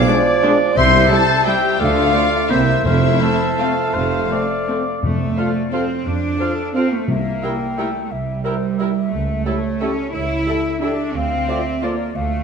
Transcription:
Already playing: bassoon F3, cor anglais D5, flute G#6
0.07 viola section G#3 D4, french horn section G#3 D4, clarinet D5
0.42 viola section G#3 D4, french horn section G#3 D4
0.76 double bass section C2, tuba C2, timpani C3, cello section C3, bassoon G3, violin section C5 C6, clarinet E5, cor anglais E5, flute G6
1.10 viola section G3 E4, french horn section G3 E4, violin section A4 A5, clarinet C5
1.46 viola section G3 E4, bassoon G3, french horn section G3 E4, violin section G4 G5, cor anglais E5, flute G6
1.79 double bass section D2, tuba D2, cello section D3, bassoon A3, violin section F4 F5, clarinet A4, cor anglais D5, flute F6
2.13 viola section F3 F4, french horn section A3 D4, clarinet D5
2.49 double bass section C2, tuba C2, cello section C3, bassoon A#3, viola section A#3 C4, french horn section A#3 C4, violin section E4 E5, cor anglais C5, clarinet E5, flute G6
2.84 double bass section F1, tuba F1, timpani F2, cello section F2, bassoon A3, violin section E4 E5, clarinet C5, cor anglais C5, flute F6
3.21 viola section A3 C4, french horn section A3 C4, cor anglais A4
3.58 bassoon A3, viola section A3 C4, french horn section A3 C4, violin section F4 F5, flute F6
3.94 tuba F1, double bass section F1, cello section F2, cor anglais C5
4.30 french horn section A3 C4, viola section A3 C4, cor anglais D5
4.68 viola section A3 C4, french horn section A3 C4
5.03 timpani F2, double bass section F2, cello section A3
5.36 bassoon F3, viola section F4, french horn section F4 A4, violin section A4 F5, clarinet C5, flute D5, cor anglais F5
5.72 bassoon F3, cello section C4, viola section F4, french horn section F4 A4, violin section A4 F5, flute C5, clarinet C5, cor anglais F5
6.06 double bass section F2, cello section D4
6.39 bassoon F3, viola section F4, french horn section F4 A4, violin section A4 F5, flute A4, clarinet C5, cor anglais F5
6.74 bassoon F3, cello section C4, french horn section F4 A4, viola section F4, violin section A4 F5, clarinet C5, flute C5, cor anglais F5
6.92 cello section A3
7.08 double bass section C2, timpani C3, cello section A#3, flute E5
7.42 bassoon G3, french horn section E4 A#4, viola section E4, clarinet A#4, violin section A#4 G5, cor anglais E5, flute G5
7.77 bassoon G3, cello section A3, french horn section E4 A#4, viola section E4, violin section A#4 G5, clarinet A#4, cor anglais E5
8.05 cello section A3
8.11 double bass section C2, cello section G3, flute E5
8.44 bassoon G3, french horn section E4 A#4, viola section E4, clarinet A#4, violin section A#4 G5, flute C5, cor anglais E5
8.78 bassoon G3, viola section E4, french horn section E4 A#4, clarinet A#4, violin section A#4 G5, cor anglais E5, flute E5
9.12 double bass section C#2, cello section A3
9.45 bassoon G3, viola section E4, french horn section G4 A4, clarinet A4, violin section A4 G5, flute C#5, cor anglais E5
9.81 bassoon G3, cello section C#4, viola section E4, french horn section G4 A4, flute A4, violin section A4 G5, clarinet A4, cor anglais E5
10.13 double bass section C#2, cello section E4, flute C#5
10.47 bassoon G3, viola section E4, french horn section G4 A4, clarinet A4, violin section A4 G5, cor anglais E5, flute E5
10.81 bassoon G3, cello section D4, viola section E4, french horn section G4 A4, clarinet A4, violin section A4 G5, cor anglais E5
11.15 double bass section D2, cello section C4, flute F5
11.48 bassoon F3, viola section F4, french horn section F4 D5, clarinet A4, violin section D5 A5, cor anglais D5, flute E5
11.82 bassoon F3, cello section A#3, viola section F4, french horn section F4 D5, clarinet A4, flute D5, violin section D5 A5, cor anglais D5
12.14 double bass section D2, cello section A3, flute F5

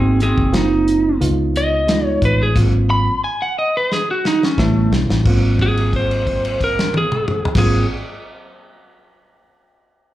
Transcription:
Already playing: fingered electric bass G#1, reed electric piano A#3 C4 D#4 F#4, lead electric guitar C4 G#4
0.20 lead electric guitar C4 G#4, closed hi-hat
0.37 fingered electric bass F#1, kick
0.52 reed electric piano A#3 C4 D#4 F4, snare, closed hi-hat
0.57 lead electric guitar D#4
0.88 closed hi-hat
1.20 fingered electric bass C#2, reed electric piano G#3 B3 D#4 F4, closed hi-hat
1.56 lead electric guitar D#5, closed hi-hat
1.88 reed electric piano G#3 B3 D#4 F4, snare, closed hi-hat
2.05 lead electric guitar C#5
2.22 fingered electric bass A1, lead electric guitar B4, kick, closed hi-hat
2.43 lead electric guitar G#4
2.55 fingered electric bass G#1, reed electric piano F#3 A#3 C4 F4, kick, closed hi-hat, crash
2.90 lead electric guitar B5
3.24 lead electric guitar G#5
3.42 lead electric guitar F#5
3.59 lead electric guitar D#5
3.77 lead electric guitar B4
3.92 lead electric guitar G#4, snare
4.11 lead electric guitar F#4
4.25 lead electric guitar D#4, snare
4.43 lead electric guitar C#4, snare
4.58 fingered electric bass A1, reed electric piano G3 B3 C#4 E4, lead electric guitar A3, kick, snare
4.91 fingered electric bass B1, snare
5.09 fingered electric bass A1, snare
5.23 fingered electric bass G#1, reed electric piano F#3 A#3 C4, kick, crash
5.28 reed electric piano F4
5.59 lead electric guitar G#4, kick, crash
5.77 crash
5.93 lead electric guitar C5, kick, crash
6.11 crash
6.27 kick, crash
6.45 crash
6.61 lead electric guitar A#4, kick, crash
6.79 snare
6.94 lead electric guitar G#4, high tom
7.12 mid tom
7.28 mid tom
7.45 floor tom
7.54 fingered electric bass G#1, reed electric piano F#3 A#3 C4, kick, snare, crash
7.58 reed electric piano F4, lead electric guitar G#4

